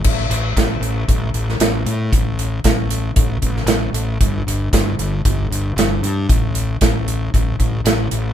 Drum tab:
CC |x---------------|----------------|----------------|----------------|
HH |--x-x-x-x-x-x-x-|x-x-x-x-x-x-x-x-|x-x-x-x-x-x-x-x-|x-x-x-x-x-x-x-x-|
SD |----o------oo---|----o------oo---|----o-------o---|----o-------o---|
BD |o---o---o-------|o---o---o-o-----|o---o---o-------|o---o---o-o-----|